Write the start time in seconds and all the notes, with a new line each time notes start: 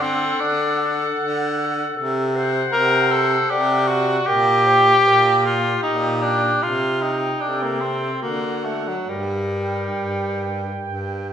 Already playing: D3 A4
0.02 C4 F#5
0.41 D3 D4
0.80 F#5
1.20 D3
1.58 F#5
1.97 C3 A4
2.34 C5 F#5
2.72 C3 A#4
3.10 A4 F#5
3.50 C3 G4 D5
3.88 F#4 F#5
4.27 A#2 G4 A#4 G5
4.66 C5 G5
5.06 A#2 A#4
5.43 F4 G4 G5
5.83 A#2 D#4
6.22 D4 G5
6.63 C3 F4
7.01 D#4 G5
7.41 C3 D4 A4
7.63 A#3
7.80 C4 G5
8.21 D3 A#3 F#4 F#5
8.65 A3 F#5
8.88 F#3
9.08 G2 G3 A#4
9.55 G5
9.97 G2
10.42 G5
10.84 G2
11.29 G5